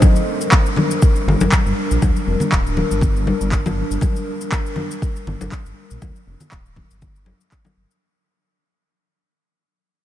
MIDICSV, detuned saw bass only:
0, 0, Header, 1, 2, 480
1, 0, Start_track
1, 0, Key_signature, -2, "minor"
1, 0, Tempo, 500000
1, 16, Time_signature, 4, 2, 24, 8
1, 9643, End_track
2, 0, Start_track
2, 0, Title_t, "Detuned saw bass"
2, 0, Program_c, 0, 39
2, 1219, Note_on_c, 0, 31, 98
2, 1305, Note_off_c, 0, 31, 0
2, 1351, Note_on_c, 0, 31, 90
2, 1419, Note_off_c, 0, 31, 0
2, 1591, Note_on_c, 0, 31, 81
2, 1660, Note_off_c, 0, 31, 0
2, 1833, Note_on_c, 0, 34, 100
2, 1900, Note_off_c, 0, 34, 0
2, 1942, Note_on_c, 0, 38, 86
2, 2026, Note_off_c, 0, 38, 0
2, 2178, Note_on_c, 0, 29, 85
2, 2264, Note_off_c, 0, 29, 0
2, 2421, Note_on_c, 0, 26, 84
2, 2717, Note_off_c, 0, 26, 0
2, 2793, Note_on_c, 0, 31, 96
2, 3196, Note_off_c, 0, 31, 0
2, 3272, Note_on_c, 0, 31, 93
2, 3676, Note_off_c, 0, 31, 0
2, 3751, Note_on_c, 0, 31, 84
2, 3819, Note_off_c, 0, 31, 0
2, 5057, Note_on_c, 0, 31, 99
2, 5143, Note_off_c, 0, 31, 0
2, 5194, Note_on_c, 0, 31, 89
2, 5261, Note_off_c, 0, 31, 0
2, 5431, Note_on_c, 0, 31, 82
2, 5500, Note_off_c, 0, 31, 0
2, 5673, Note_on_c, 0, 34, 97
2, 5741, Note_off_c, 0, 34, 0
2, 5781, Note_on_c, 0, 38, 88
2, 5866, Note_off_c, 0, 38, 0
2, 6017, Note_on_c, 0, 29, 88
2, 6103, Note_off_c, 0, 29, 0
2, 6261, Note_on_c, 0, 26, 82
2, 6557, Note_off_c, 0, 26, 0
2, 6635, Note_on_c, 0, 31, 95
2, 7037, Note_off_c, 0, 31, 0
2, 7461, Note_on_c, 0, 31, 78
2, 7545, Note_off_c, 0, 31, 0
2, 9643, End_track
0, 0, End_of_file